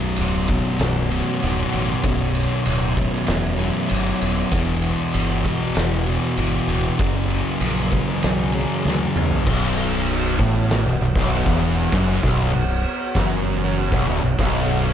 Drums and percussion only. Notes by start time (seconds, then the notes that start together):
0.16 ride
0.48 kick, ride
0.79 snare, ride
1.11 ride
1.42 ride
1.73 ride
2.04 kick, ride
2.35 ride
2.65 ride
2.97 kick, ride
3.14 snare
3.27 snare, ride
3.59 ride
3.90 ride
4.21 ride
4.52 kick, ride
4.82 ride
5.14 ride
5.44 kick, ride
5.75 snare, ride
6.07 ride
6.37 ride
6.69 ride
6.99 kick, ride
7.30 ride
7.61 ride
7.92 kick, ride
8.09 snare
8.23 snare, ride
8.53 ride
8.87 snare
9.16 mid tom
9.31 floor tom
9.47 kick, crash
10.09 crash
10.39 kick
10.69 snare, crash
11.15 kick, snare
11.30 crash
11.46 kick
11.92 kick, crash
12.23 kick
12.53 crash
13.15 kick, snare, crash
13.63 snare
13.76 crash
13.92 kick
14.39 kick, crash